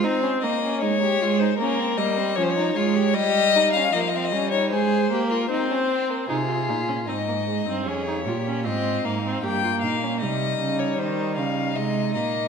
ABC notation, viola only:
X:1
M:4/4
L:1/16
Q:1/4=77
K:Abmix
V:1 name="Viola"
C2 B,2 A,2 A,2 B,2 =G,2 F,2 A,2 | =G,4 F,2 G,2 A,2 B,2 C4 | E F E D C B, A, C D E F D C2 B, C | B,4 =G,8 A,2 B,2 |]